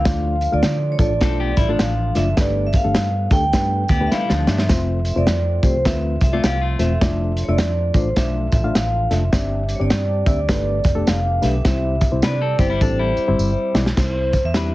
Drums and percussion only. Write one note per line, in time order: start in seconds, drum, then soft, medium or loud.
0.05 kick loud
0.05 snare loud
0.05 closed hi-hat medium
0.05 tambourine medium
0.41 closed hi-hat medium
0.41 tambourine medium
0.63 snare loud
0.63 closed hi-hat loud
0.63 tambourine medium
0.99 kick medium
0.99 closed hi-hat medium
0.99 tambourine medium
1.21 kick medium
1.21 snare loud
1.21 closed hi-hat medium
1.21 tambourine medium
1.57 kick loud
1.57 closed hi-hat medium
1.57 tambourine medium
1.79 snare loud
1.79 closed hi-hat loud
1.79 tambourine loud
2.15 snare soft
2.15 closed hi-hat medium
2.15 tambourine medium
2.37 kick loud
2.37 snare loud
2.37 closed hi-hat medium
2.37 tambourine loud
2.73 kick medium
2.73 closed hi-hat medium
2.73 tambourine medium
2.95 snare loud
2.95 closed hi-hat loud
2.95 tambourine medium
3.31 kick medium
3.31 closed hi-hat medium
3.31 tambourine medium
3.53 kick medium
3.53 snare medium
3.53 closed hi-hat medium
3.53 tambourine medium
3.88 kick medium
3.88 closed hi-hat medium
3.88 tambourine medium
4.12 snare medium
4.12 tambourine loud
4.30 snare medium
4.47 snare medium
4.47 tambourine medium
4.58 snare medium
4.69 kick loud
4.69 snare loud
4.69 closed hi-hat medium
4.69 tambourine medium
5.05 closed hi-hat medium
5.05 tambourine medium
5.27 snare loud
5.27 closed hi-hat loud
5.27 tambourine medium
5.63 kick loud
5.63 closed hi-hat medium
5.63 tambourine medium
5.85 kick medium
5.85 snare loud
5.85 closed hi-hat medium
5.85 tambourine medium
6.21 kick loud
6.21 closed hi-hat medium
6.21 tambourine medium
6.44 snare loud
6.44 closed hi-hat loud
6.44 tambourine loud
6.79 snare soft
6.79 closed hi-hat medium
6.79 tambourine medium
7.01 kick loud
7.01 snare loud
7.01 closed hi-hat medium
7.01 tambourine medium
7.37 closed hi-hat medium
7.37 tambourine medium
7.58 snare loud
7.58 closed hi-hat loud
7.58 tambourine medium
7.94 kick loud
7.94 closed hi-hat medium
7.94 tambourine medium
8.16 kick medium
8.16 snare loud
8.16 closed hi-hat medium
8.16 tambourine medium
8.52 kick medium
8.52 closed hi-hat medium
8.52 tambourine medium
8.75 snare loud
8.75 closed hi-hat loud
8.75 tambourine loud
9.11 snare soft
9.11 closed hi-hat medium
9.11 tambourine medium
9.33 kick loud
9.33 snare loud
9.33 closed hi-hat medium
9.33 tambourine loud
9.69 closed hi-hat medium
9.69 tambourine medium
9.90 snare loud
9.90 closed hi-hat loud
9.90 tambourine medium
10.26 kick loud
10.26 closed hi-hat medium
10.26 tambourine medium
10.49 kick medium
10.49 snare loud
10.49 closed hi-hat medium
10.49 tambourine medium
10.84 kick loud
10.84 closed hi-hat medium
10.84 tambourine medium
11.07 snare loud
11.07 closed hi-hat loud
11.07 tambourine loud
11.42 snare soft
11.42 closed hi-hat medium
11.42 tambourine medium
11.65 kick loud
11.65 snare loud
11.65 closed hi-hat medium
11.65 tambourine loud
12.01 kick medium
12.01 closed hi-hat medium
12.01 tambourine medium
12.22 snare loud
12.22 closed hi-hat loud
12.22 tambourine medium
12.59 kick loud
12.59 closed hi-hat medium
12.59 tambourine medium
12.81 kick medium
12.81 tambourine medium
13.17 tambourine medium
13.39 tambourine loud
13.75 snare loud
13.75 tambourine medium
13.86 snare medium
13.97 kick loud
13.97 snare loud
13.97 crash medium
13.97 tambourine medium
14.33 kick medium
14.33 closed hi-hat medium
14.33 tambourine medium
14.54 snare loud
14.54 closed hi-hat medium
14.54 tambourine medium